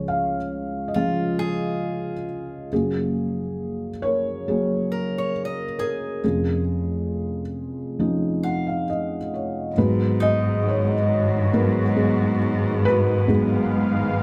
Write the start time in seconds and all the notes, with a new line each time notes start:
Already playing: C#2 C#3 F3 C#4 F4 G#4 C#5
0.08 F5
0.88 D#5
0.94 F3 C#4 F4 G#4 F5
1.39 G#4
2.72 F#1 F#2 F#3 A#3 G#4
4.02 A#4 C#5
4.48 F#3 A#3 G#4
4.92 A#4
5.18 C#5
5.45 D#5
5.79 G#4 A#4
6.24 F1 F2 F3 C#4 F4 G#4
7.99 F3 C#4 D#4
8.43 F5 F#5
8.67 F5
8.90 D#5
9.34 C#5
9.75 G#1 G#2 D#3 F#3 G#3 B3 F#4 G#4 B4
10.20 D#4 D#5
10.68 C#5
11.53 F#3 B3 F#4 A#4 B4
11.96 F#3 B3 G#4
12.85 F#4 B4
13.27 G#1 G#2 F#3 B3 G#4 F5